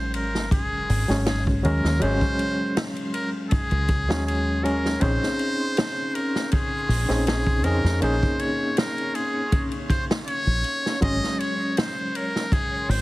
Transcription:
Already playing: F#3 G#3 C#4 C5 C6, sub drop
0.14 A#4, ride
0.35 snare
0.51 G#4, kick, ride
0.89 G#1, open hi-hat
1.08 G#1 F#3 G#3 C#4, snare
1.26 G#4, snare, ride
1.47 kick
1.63 D#2 F#3 G#3 C#4 A#4, ride
1.84 D#2, snare
2.00 G#1 F#3 G#3 C#4 C5, ride
2.21 kick
2.39 ride
2.77 snare, ride
2.96 ride
3.14 A#4, ride
3.51 G#4, kick, ride
3.71 C#2, ride
3.88 kick, ride
4.08 D#2 F#3 G#3 C#4, snare
4.27 G#4, ride
4.63 F#3 G#3 C#4 A#4, ride
4.86 snare
5.00 A#1 C4 C#4 D#4 G#4 C5, kick, ride
5.23 snare
5.39 ride
5.77 snare, ride
6.15 A#4, ride
6.36 snare
6.52 G#4, kick, ride
6.89 A#1, open hi-hat
7.09 A#1 C4 C#4 D#4 G#4, snare
7.27 G#4, snare, ride
7.47 kick
7.64 F2 C4 C#4 D#4 G#4 A#4, ride
7.84 F2, snare
8.01 A#1 A#3 C#4 D#4 G#4 C5, ride
8.23 kick
8.39 C#5, ride
8.77 A#4, snare, ride
8.98 ride
9.15 G#4, ride
9.52 kick, ride
9.71 ride
9.89 C5, kick, ride
10.11 snare
10.27 C#5, ride
10.47 A#1
10.64 ride
10.86 snare
11.01 G#1 F#3 G#3 C#4 D#5, kick, ride
11.24 snare
11.39 C#5, ride
11.77 C5, snare, ride
12.15 A#4, ride
12.36 snare
12.52 G#4, kick, ride
12.89 G#1 C5, open hi-hat

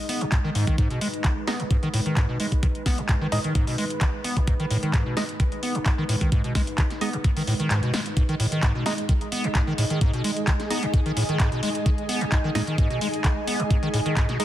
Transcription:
Already playing: G#3 D#4 D#5
0.09 B3, open hi-hat
0.21 G#2, closed hi-hat
0.32 G#2, kick, clap, closed hi-hat
0.44 D#3
0.55 G#2, open hi-hat
0.67 D#3, kick, closed hi-hat
0.78 G#2 B4, kick, closed hi-hat
0.90 B2, closed hi-hat
1.01 G#3, open hi-hat
1.14 closed hi-hat
1.24 D#3, kick, clap, closed hi-hat
1.47 G#3 B3 D#4 D#5, snare, open hi-hat
1.60 G#2, closed hi-hat
1.71 G#2, kick, closed hi-hat
1.83 D#3, closed hi-hat
1.94 A2, open hi-hat
2.06 D#3, closed hi-hat
2.17 G#2, kick, clap, closed hi-hat
2.29 B2
2.40 G#3, open hi-hat
2.52 kick, closed hi-hat
2.63 D#3, kick, closed hi-hat
2.75 closed hi-hat
2.86 B3, kick, snare, open hi-hat
2.98 G#2, closed hi-hat
3.09 G#2, kick, clap, closed hi-hat
3.21 D#3
3.32 A2 G#3 D#4 D#5, open hi-hat
3.44 D#3, closed hi-hat
3.55 G#2, kick, closed hi-hat
3.67 B2, open hi-hat
3.78 G#3, open hi-hat
3.90 closed hi-hat
4.01 D#3, kick, clap, closed hi-hat
4.24 B3, open hi-hat
4.37 G#2, kick, closed hi-hat
4.47 G#2, kick, closed hi-hat
4.60 D#3, closed hi-hat
4.71 A2, open hi-hat
4.83 D#3, closed hi-hat
4.94 G#2, kick, clap, closed hi-hat
5.06 B2
5.17 G#3 D#4 D#5, snare, open hi-hat
5.29 closed hi-hat
5.40 D#3, kick, closed hi-hat
5.52 closed hi-hat
5.63 B3, open hi-hat
5.75 G#2, closed hi-hat
5.86 G#2, kick, clap, closed hi-hat
5.98 D#3
6.09 A2, open hi-hat
6.21 D#3, kick, closed hi-hat
6.32 G#2, kick, closed hi-hat
6.44 B2, closed hi-hat
6.55 G#3, kick, snare, open hi-hat
6.67 closed hi-hat
6.78 D#3, kick, clap, closed hi-hat
6.90 snare, closed hi-hat
7.01 G#3 B3 D#4 D#5, open hi-hat
7.13 G#2, closed hi-hat
7.24 G#2, kick, closed hi-hat
7.37 D#3, open hi-hat
7.47 A2, open hi-hat
7.60 D#3, closed hi-hat
7.71 G#2, clap, closed hi-hat
7.83 B2, closed hi-hat
7.94 G#3, snare, open hi-hat
8.06 closed hi-hat
8.17 G#2 G#3 D#4 G#4 D#5, kick, closed hi-hat
8.29 D#3, closed hi-hat
8.37 A2 D#5, open hi-hat
8.52 D#3, closed hi-hat
8.63 G#2, kick, clap, closed hi-hat
8.75 B2
8.86 G#3 D#4 D#5, snare, open hi-hat
8.96 G#5, closed hi-hat
9.09 D#3, kick, closed hi-hat
9.21 closed hi-hat
9.32 B3, open hi-hat
9.44 G#2, closed hi-hat
9.55 G#2, kick, clap, closed hi-hat
9.67 D#3
9.78 A2, open hi-hat
9.90 D#3, closed hi-hat
10.01 G#2, kick, closed hi-hat
10.13 B2, closed hi-hat
10.24 G#3, open hi-hat
10.37 closed hi-hat
10.47 D#3, kick, clap, closed hi-hat
10.60 snare, closed hi-hat
10.70 G#3 B3 D#4 D#5, open hi-hat
10.83 G#2, closed hi-hat
10.94 G#2, kick, closed hi-hat
11.06 D#3, closed hi-hat
11.17 A2, open hi-hat
11.29 D#3, closed hi-hat
11.40 G#2, kick, clap, closed hi-hat
11.52 B2, closed hi-hat
11.63 G#3, open hi-hat
11.75 closed hi-hat
11.86 D#3, kick, closed hi-hat
11.98 closed hi-hat
12.09 B3, open hi-hat
12.21 G#2, closed hi-hat
12.32 G#2, kick, clap, closed hi-hat
12.44 D#3
12.55 A2 G#3 D#4 D#5, snare, open hi-hat
12.67 D#3, closed hi-hat
12.78 G#2, kick, closed hi-hat
12.90 B2, closed hi-hat
13.01 G#3, open hi-hat
13.14 closed hi-hat
13.24 D#3, kick, clap, closed hi-hat
13.47 B3, open hi-hat
13.60 G#2, closed hi-hat
13.71 G#2, kick, closed hi-hat
13.83 D#3, closed hi-hat
13.94 A2, open hi-hat
14.06 D#3, closed hi-hat
14.17 G#2, kick, clap, closed hi-hat
14.29 B2, snare, closed hi-hat
14.40 G#3 D#4 D#5, open hi-hat

